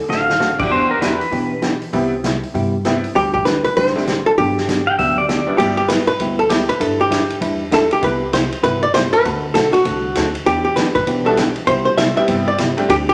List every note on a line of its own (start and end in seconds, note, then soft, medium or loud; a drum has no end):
0.09 0.59 A1 medium
0.09 0.30 D3 medium
0.09 0.30 A3 medium
0.09 0.30 C4 medium
0.09 0.30 F#4 medium
0.09 0.30 A4 medium
0.09 0.58 F5 medium
0.09 snare soft
0.29 snare medium
0.40 0.51 D3 medium
0.40 0.51 A3 medium
0.40 0.52 C4 medium
0.40 0.52 F#4 medium
0.40 0.52 A4 medium
0.40 snare medium
0.59 0.99 D4 medium
0.59 0.99 E4 medium
0.59 0.99 F#4 medium
0.59 1.00 G4 medium
0.59 0.71 D5 medium
0.59 kick medium
0.59 crash medium
0.70 1.20 E2 medium
0.70 0.91 E3 medium
0.70 0.91 B3 medium
0.70 0.91 D4 medium
0.70 0.92 G4 medium
0.70 0.90 C5 medium
0.70 kick soft
0.91 1.01 A#4 medium
1.01 1.13 E3 medium
1.01 1.13 B3 medium
1.01 1.18 D4 medium
1.01 1.13 D4 medium
1.01 1.19 E4 soft
1.01 1.19 F#4 soft
1.01 1.13 G4 medium
1.01 1.19 G4 medium
1.01 1.60 B4 medium
1.01 snare medium
1.01 closed hi-hat medium
1.21 open hi-hat soft
1.32 1.81 B1 medium
1.32 1.52 E3 soft
1.32 1.52 B3 medium
1.32 1.53 D4 medium
1.32 1.53 G4 medium
1.32 kick soft
1.32 open hi-hat soft
1.62 1.74 E3 medium
1.62 1.74 B3 medium
1.62 1.74 D4 medium
1.62 1.74 G4 medium
1.62 snare medium
1.62 closed hi-hat medium
1.82 open hi-hat soft
1.93 2.42 C2 medium
1.93 2.13 C3 medium
1.93 2.14 G3 medium
1.93 2.10 B3 medium
1.93 2.14 B3 medium
1.93 2.10 C4 medium
1.93 2.14 E4 medium
1.93 2.11 E4 soft
1.93 2.14 G4 medium
1.93 2.11 G4 medium
1.93 kick soft
1.93 open hi-hat soft
2.24 2.35 C3 medium
2.24 2.35 G3 medium
2.24 2.35 B3 medium
2.24 2.35 E4 medium
2.24 2.36 G4 medium
2.24 snare medium
2.24 closed hi-hat medium
2.43 open hi-hat soft
2.54 3.03 G2 medium
2.54 2.74 C3 medium
2.54 2.75 G3 medium
2.54 2.75 B3 medium
2.54 2.75 E4 medium
2.54 2.75 G4 medium
2.54 kick soft
2.54 open hi-hat soft
2.85 2.96 C3 medium
2.85 2.96 G3 medium
2.85 3.02 B3 medium
2.85 2.97 B3 medium
2.85 3.02 C4 medium
2.85 3.02 E4 medium
2.85 2.97 E4 medium
2.85 3.03 G4 medium
2.85 2.97 G4 medium
2.85 snare medium
2.85 closed hi-hat soft
3.04 open hi-hat soft
3.15 3.64 D2 medium
3.15 3.36 D3 medium
3.15 3.36 G3 medium
3.15 3.36 C4 medium
3.15 3.36 D4 medium
3.15 3.32 G4 medium
3.15 3.36 G4 medium
3.15 kick soft
3.15 open hi-hat soft
3.34 3.44 G4 medium
3.34 kick medium
3.45 3.57 D3 medium
3.45 3.57 G3 medium
3.45 3.57 C4 medium
3.45 3.58 D4 medium
3.45 3.58 G4 medium
3.45 3.63 B4 medium
3.45 snare medium
3.45 closed hi-hat medium
3.64 3.76 B4 medium
3.64 open hi-hat soft
3.76 4.25 A1 medium
3.76 3.97 D3 medium
3.76 3.97 G3 medium
3.76 3.97 C4 medium
3.76 3.97 D4 medium
3.76 3.97 G4 medium
3.76 4.27 C5 loud
3.76 kick soft
3.76 open hi-hat soft
3.86 snare soft
3.96 4.06 A3 medium
3.96 4.06 C4 medium
3.96 4.06 D4 medium
3.96 4.06 G4 medium
3.96 snare soft
4.07 4.18 D3 medium
4.07 4.18 G3 medium
4.07 4.18 C4 medium
4.07 4.19 D4 medium
4.07 4.19 G4 medium
4.07 snare medium
4.07 closed hi-hat soft
4.26 4.31 A4 medium
4.38 4.86 G1 medium
4.38 4.58 D3 medium
4.38 4.58 F#3 medium
4.38 4.58 B3 medium
4.38 4.58 D4 medium
4.38 5.25 G4 medium
4.38 4.59 G4 medium
4.38 kick soft
4.38 open hi-hat soft
4.57 snare soft
4.68 4.79 D3 medium
4.68 4.79 F#3 medium
4.68 4.79 B3 medium
4.68 4.79 D4 medium
4.68 4.79 G4 medium
4.68 snare medium
4.68 closed hi-hat medium
4.87 4.98 G5 medium
4.98 5.47 D2 medium
4.98 5.18 D3 soft
4.98 5.19 F#3 medium
4.98 5.19 B3 medium
4.98 5.19 D4 medium
4.98 5.19 G4 medium
4.98 5.17 E5 medium
4.98 kick soft
4.98 open hi-hat soft
5.18 5.28 D5 medium
5.29 5.40 D3 medium
5.29 5.40 F#3 medium
5.29 5.40 B3 medium
5.29 5.40 D4 medium
5.29 5.40 G4 medium
5.29 snare medium
5.29 closed hi-hat medium
5.47 5.87 G3 medium
5.47 5.87 B3 medium
5.47 5.87 D4 medium
5.47 5.87 E4 medium
5.58 6.08 G1 medium
5.58 5.79 G3 medium
5.58 5.79 B3 medium
5.58 5.80 E4 medium
5.58 5.76 G4 medium
5.58 5.80 G4 medium
5.58 kick soft
5.58 ride medium
5.77 5.88 G4 medium
5.89 6.00 G3 medium
5.89 6.01 B3 medium
5.89 6.01 E4 medium
5.89 6.01 G4 medium
5.89 6.06 B4 medium
5.89 kick soft
5.89 snare medium
5.89 hi-hat pedal medium
5.89 ride medium
6.07 6.39 B4 loud
6.20 6.68 D2 medium
6.20 6.40 G3 medium
6.20 6.41 B3 medium
6.20 6.41 E4 medium
6.20 6.41 G4 medium
6.20 kick soft
6.20 ride medium
6.39 6.49 A4 medium
6.49 6.61 G3 medium
6.49 6.61 B3 medium
6.49 6.62 E4 medium
6.49 6.69 G4 medium
6.49 6.62 G4 medium
6.49 kick soft
6.49 snare medium
6.49 hi-hat pedal medium
6.49 ride medium
6.69 6.81 B4 medium
6.69 ride soft
6.80 7.29 G1 medium
6.80 7.01 G3 medium
6.80 7.01 D4 medium
6.80 7.01 E4 medium
6.80 7.00 A4 medium
6.80 7.01 B4 medium
6.80 kick soft
6.80 ride medium
7.01 7.39 G4 medium
7.10 7.22 G3 medium
7.10 7.22 D4 medium
7.10 7.22 E4 medium
7.10 7.22 B4 medium
7.10 kick soft
7.10 snare medium
7.10 hi-hat pedal medium
7.10 ride medium
7.30 ride soft
7.41 7.90 E2 medium
7.41 7.61 G3 medium
7.41 7.62 D4 medium
7.41 7.62 E4 medium
7.41 7.62 B4 medium
7.41 kick soft
7.41 ride medium
7.71 7.83 G3 medium
7.71 7.83 D4 medium
7.71 7.83 E4 medium
7.71 7.92 A4 medium
7.71 7.83 B4 medium
7.71 kick soft
7.71 snare medium
7.71 hi-hat pedal medium
7.71 ride medium
7.91 8.03 G4 medium
7.91 ride soft
8.02 8.51 C2 medium
8.02 8.22 C3 medium
8.02 8.22 G3 medium
8.02 8.23 B3 medium
8.02 8.23 E4 medium
8.02 8.23 G4 medium
8.02 8.33 B4 medium
8.02 kick soft
8.02 ride medium
8.33 8.44 C3 medium
8.33 8.44 G3 medium
8.33 8.44 B3 medium
8.33 8.45 E4 medium
8.33 8.45 G4 medium
8.33 8.63 C5 medium
8.33 kick soft
8.33 snare medium
8.33 hi-hat pedal medium
8.33 ride medium
8.52 ride soft
8.63 9.12 G1 medium
8.63 8.83 C3 medium
8.63 8.83 G3 medium
8.63 8.84 B3 medium
8.63 8.84 E4 medium
8.63 8.84 G4 medium
8.63 8.82 B4 loud
8.63 kick soft
8.63 ride medium
8.83 8.94 D5 medium
8.94 9.05 C3 medium
8.94 9.05 G3 medium
8.94 9.05 B3 medium
8.94 9.05 E4 medium
8.94 9.05 G4 medium
8.94 9.12 C5 loud
8.94 kick soft
8.94 snare medium
8.94 hi-hat pedal medium
8.94 ride medium
9.13 9.56 B4 loud
9.13 ride soft
9.24 9.49 D2 medium
9.24 9.45 D3 medium
9.24 9.45 A3 medium
9.24 9.45 C4 medium
9.24 9.45 F#4 medium
9.24 9.45 A4 medium
9.24 kick soft
9.24 ride medium
9.54 9.81 B1 medium
9.54 9.66 D3 medium
9.54 9.66 A3 medium
9.54 9.66 C4 medium
9.54 9.66 F#4 medium
9.54 9.73 A4 medium
9.54 9.66 A4 medium
9.54 kick soft
9.54 snare medium
9.54 hi-hat pedal medium
9.54 ride medium
9.73 10.30 F#4 medium
9.73 ride soft
9.85 10.11 C2 medium
9.85 10.05 D3 medium
9.85 10.05 A3 medium
9.85 10.06 C4 medium
9.85 10.06 F#4 medium
9.85 10.06 A4 medium
9.85 kick soft
9.85 ride medium
10.15 10.41 D2 medium
10.15 10.27 D3 medium
10.15 10.27 A3 medium
10.15 10.27 C4 medium
10.15 10.27 F#4 medium
10.15 10.27 A4 medium
10.15 kick soft
10.15 snare medium
10.15 hi-hat pedal medium
10.15 ride medium
10.35 ride medium
10.46 10.95 E2 medium
10.46 10.66 E3 medium
10.46 10.66 B3 medium
10.46 10.66 D4 medium
10.46 10.63 G4 medium
10.46 10.67 G4 medium
10.46 kick soft
10.46 ride medium
10.65 10.75 G4 medium
10.76 10.88 E3 medium
10.76 10.88 B3 medium
10.76 10.88 D4 medium
10.76 10.88 G4 medium
10.76 10.94 B4 medium
10.76 kick soft
10.76 snare medium
10.76 hi-hat pedal medium
10.76 ride medium
10.95 11.26 B4 medium
10.95 kick medium
10.95 ride medium
11.07 11.55 B1 medium
11.07 11.27 E3 medium
11.07 11.27 B3 medium
11.07 11.28 D4 medium
11.07 11.28 G4 medium
11.07 kick soft
11.07 ride medium
11.25 11.35 G3 medium
11.25 11.36 B3 medium
11.25 11.36 D4 medium
11.25 11.36 E4 medium
11.25 11.36 F#4 medium
11.25 11.36 A4 medium
11.37 11.48 E3 medium
11.37 11.49 B3 medium
11.37 11.49 D4 medium
11.37 11.49 G4 medium
11.37 kick soft
11.37 snare medium
11.37 hi-hat pedal medium
11.37 ride medium
11.56 ride soft
11.67 12.16 C2 medium
11.67 11.88 C3 medium
11.67 11.88 G3 medium
11.67 11.88 B3 medium
11.67 11.88 E4 medium
11.67 11.88 G4 medium
11.67 11.84 C5 medium
11.67 kick soft
11.67 ride medium
11.85 11.97 C5 medium
11.98 12.09 C3 medium
11.98 12.09 G3 medium
11.98 12.09 B3 medium
11.98 12.09 E4 medium
11.98 12.10 G4 medium
11.98 12.16 E5 medium
11.98 kick soft
11.98 snare medium
11.98 hi-hat pedal medium
11.98 ride medium
12.16 12.56 G3 medium
12.16 12.56 B3 medium
12.16 12.56 C4 medium
12.16 12.56 E4 medium
12.16 12.57 G4 medium
12.16 12.47 E5 loud
12.28 12.77 G1 medium
12.28 12.48 C3 medium
12.28 12.49 G3 medium
12.28 12.49 B3 medium
12.28 12.49 E4 medium
12.28 12.49 G4 medium
12.28 kick soft
12.28 ride medium
12.48 12.58 D5 medium
12.58 12.70 C3 medium
12.58 12.70 G3 medium
12.58 12.70 B3 medium
12.58 12.70 E4 medium
12.58 12.71 G4 medium
12.58 kick soft
12.58 snare medium
12.58 hi-hat pedal medium
12.58 ride medium
12.77 12.88 G3 medium
12.77 12.88 A3 medium
12.77 12.88 C4 medium
12.77 12.88 D4 medium
12.77 12.89 G4 medium
12.77 ride soft
12.88 13.14 D2 loud
12.88 13.09 D3 medium
12.88 13.09 G3 medium
12.88 13.09 C4 medium
12.88 13.09 D4 medium
12.88 13.09 G4 medium
12.88 12.95 G4 loud
12.88 kick soft
12.88 ride medium
13.09 13.14 G4 medium